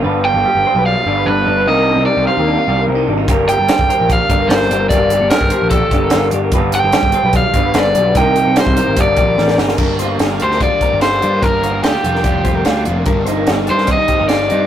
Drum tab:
CC |----------------|----------------|----------------|----------------|
HH |----------------|----------------|x-x-x-x-x-x-x-x-|x-x-x-x-x-x-x-x-|
SD |----------------|----------------|----o-------oo--|----o-------o---|
BD |----------------|----------------|o----o--o-o-----|o----o--o-o-----|

CC |----------------|----------------|x---------------|----------------|
HH |x-x-x-x-x-x-x-x-|x-x-x-x-x-x-----|--x-x-x-x-x-x-x-|x-x-x-x-x-x-x-x-|
SD |----o-------o---|----o-------oooo|----o--o----o---|----o--o----o---|
BD |o----o--o-o-----|o----o--o-o-----|o-------o-o-----|o-------o-o-----|

CC |----------------|
HH |x-x-x-x-x-x-x-x-|
SD |----o--o----o---|
BD |o-------o-o-----|